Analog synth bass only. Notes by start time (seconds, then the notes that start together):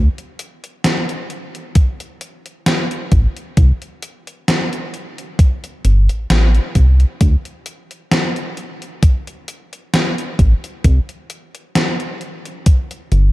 3.12 A1
3.57 C2
5.85 G1
6.09 A1
6.30 A1
6.75 C2
7.21 D2
10.39 A1
10.85 C2
13.12 G1